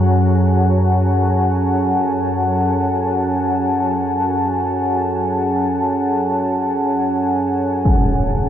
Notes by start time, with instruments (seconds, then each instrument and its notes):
Already playing: synth drone F#2 F#3, ambient pad C#5 F#5 G#5 A5
7.85 synth drone A3, impact